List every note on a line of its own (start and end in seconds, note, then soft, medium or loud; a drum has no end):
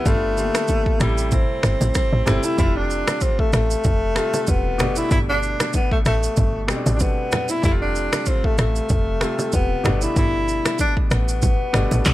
0.04 0.51 G1 loud
0.04 0.31 D3 medium
0.04 0.31 G3 medium
0.04 1.00 A3 loud
0.04 0.32 B3 medium
0.04 0.32 F4 medium
0.04 kick loud
0.04 low conga medium
0.04 shaker medium
0.36 1.00 D3 medium
0.36 0.98 G3 medium
0.36 0.45 A#3 soft
0.36 1.01 F4 medium
0.36 shaker soft
0.44 1.04 B3 medium
0.55 finger snap medium
0.55 cross-stick loud
0.55 high bongo medium
0.55 shaker medium
0.68 kick medium
0.68 high bongo medium
0.68 shaker medium
0.86 kick medium
0.99 1.45 A1 loud
0.99 2.02 C3 medium
0.99 2.02 G3 medium
0.99 1.34 G3 medium
0.99 2.02 A3 medium
0.99 2.03 E4 medium
0.99 finger snap medium
0.99 cross-stick medium
0.99 shaker medium
1.18 shaker medium
1.31 1.95 C4 medium
1.31 kick loud
1.31 low conga medium
1.31 shaker medium
1.63 1.76 G1 loud
1.63 finger snap medium
1.63 cross-stick loud
1.63 shaker soft
1.81 1.91 A1 loud
1.81 low bongo medium
1.81 shaker medium
1.95 2.46 C4 medium
1.95 finger snap medium
1.95 kick medium
1.95 cross-stick medium
1.95 high bongo medium
1.95 shaker medium
2.13 2.23 A1 loud
2.26 2.39 G1 loud
2.26 2.52 C3 medium
2.26 2.53 G3 medium
2.26 2.53 A3 medium
2.26 2.53 E4 medium
2.26 finger snap medium
2.26 cross-stick loud
2.26 high bongo medium
2.26 low bongo medium
2.26 low conga medium
2.26 shaker soft
2.43 2.58 E4 loud
2.43 shaker medium
2.57 3.03 F1 loud
2.57 3.59 C3 medium
2.57 3.60 G3 medium
2.57 3.60 A3 medium
2.57 2.78 E4 loud
2.57 3.61 F4 medium
2.57 kick loud
2.57 low conga medium
2.57 shaker medium
2.76 3.24 D4 loud
2.90 shaker soft
3.07 finger snap medium
3.07 cross-stick loud
3.07 high bongo medium
3.07 low bongo medium
3.07 shaker medium
3.21 3.41 C4 loud
3.21 kick medium
3.21 high bongo medium
3.21 shaker medium
3.39 3.54 A3 medium
3.39 kick medium
3.53 3.76 A1 medium
3.53 4.50 A3 loud
3.53 finger snap medium
3.53 cross-stick loud
3.53 shaker medium
3.70 shaker medium
3.84 4.20 F1 loud
3.84 kick loud
3.84 low conga medium
3.84 shaker medium
4.15 4.79 C3 medium
4.15 4.78 G3 medium
4.15 4.78 A3 medium
4.15 4.80 F4 medium
4.15 finger snap medium
4.15 cross-stick loud
4.15 shaker soft
4.34 low bongo medium
4.34 shaker medium
4.47 4.81 E1 loud
4.47 4.99 B3 loud
4.47 kick medium
4.47 high bongo medium
4.47 shaker medium
4.78 5.02 G1 loud
4.78 5.80 B2 medium
4.78 5.81 G3 medium
4.78 5.81 A3 medium
4.78 5.82 D4 medium
4.78 finger snap medium
4.78 cross-stick loud
4.78 low bongo medium
4.78 low conga medium
4.78 shaker soft
4.96 5.11 E4 loud
4.96 shaker medium
5.11 5.56 G1 loud
5.11 5.19 E4 loud
5.11 kick loud
5.11 low conga medium
5.11 shaker medium
5.29 5.71 D4 loud
5.43 shaker soft
5.60 finger snap medium
5.60 cross-stick loud
5.60 high bongo medium
5.60 low bongo medium
5.60 shaker medium
5.73 5.91 B3 medium
5.73 kick medium
5.73 high bongo medium
5.73 shaker medium
5.91 5.99 A3 medium
5.91 kick medium
6.05 6.28 A1 medium
6.05 6.70 A3 medium
6.05 finger snap medium
6.05 cross-stick medium
6.05 shaker medium
6.23 shaker medium
6.37 6.72 G1 medium
6.37 kick loud
6.37 low conga medium
6.37 shaker medium
6.68 7.45 B2 medium
6.68 7.46 G3 medium
6.68 7.46 A3 medium
6.68 6.77 C4 medium
6.68 finger snap medium
6.68 cross-stick loud
6.68 shaker soft
6.77 7.50 D4 medium
6.86 7.09 A1 medium
6.86 low bongo medium
6.86 shaker medium
6.95 7.03 D4 medium
7.00 7.52 B3 loud
7.00 kick medium
7.00 high bongo medium
7.00 shaker medium
7.32 finger snap medium
7.32 cross-stick loud
7.32 low bongo medium
7.32 low conga medium
7.32 shaker soft
7.48 7.64 E4 loud
7.48 shaker medium
7.62 8.09 F1 loud
7.62 8.65 C3 medium
7.62 8.65 G3 medium
7.62 8.65 A3 medium
7.62 7.72 E4 loud
7.62 7.71 E4 medium
7.62 kick loud
7.62 low conga medium
7.62 shaker medium
7.71 8.69 F4 medium
7.82 8.29 D4 loud
7.95 shaker soft
8.13 finger snap medium
8.13 cross-stick loud
8.13 high bongo medium
8.13 low bongo medium
8.13 shaker medium
8.26 8.47 C4 loud
8.26 kick medium
8.26 high bongo medium
8.26 shaker medium
8.44 8.59 A3 medium
8.44 kick medium
8.58 8.81 A1 loud
8.58 9.50 A3 medium
8.58 finger snap medium
8.58 cross-stick loud
8.58 shaker medium
8.76 shaker medium
8.89 9.25 F1 loud
8.89 kick loud
8.89 low conga medium
8.89 shaker medium
9.20 9.84 C3 medium
9.20 9.83 G3 medium
9.20 9.84 A3 medium
9.20 9.85 F4 medium
9.20 finger snap medium
9.20 cross-stick loud
9.20 shaker soft
9.39 low bongo medium
9.39 shaker medium
9.52 9.76 E1 medium
9.52 10.04 B3 medium
9.52 kick medium
9.52 high bongo medium
9.52 shaker medium
9.84 10.07 G1 loud
9.84 10.86 B2 medium
9.84 10.86 G3 medium
9.84 10.87 A3 medium
9.84 10.87 D4 medium
9.84 finger snap medium
9.84 cross-stick loud
9.84 low bongo medium
9.84 low conga medium
9.84 shaker soft
10.01 10.17 E4 medium
10.01 shaker medium
10.16 10.61 G1 loud
10.16 10.76 E4 loud
10.16 kick loud
10.16 low conga medium
10.16 shaker medium
10.48 shaker soft
10.65 finger snap medium
10.65 cross-stick loud
10.65 high bongo medium
10.65 low bongo medium
10.65 shaker medium
10.79 10.94 D4 medium
10.79 kick medium
10.79 high bongo medium
10.79 shaker medium
10.97 kick medium
11.11 11.56 A1 medium
11.11 12.14 B3 medium
11.11 finger snap medium
11.11 cross-stick medium
11.11 shaker medium
11.28 shaker medium
11.42 kick loud
11.42 low conga medium
11.42 shaker medium
11.73 11.87 G1 loud
11.73 12.14 B2 medium
11.73 12.14 G3 medium
11.73 12.14 A3 medium
11.73 12.14 D4 medium
11.73 finger snap medium
11.73 cross-stick loud
11.73 shaker medium
11.91 12.02 A1 medium
11.91 low bongo medium
11.91 shaker medium
12.05 12.14 B1 loud
12.05 finger snap medium
12.05 kick medium
12.05 cross-stick medium
12.05 clap medium
12.05 high bongo medium
12.05 shaker medium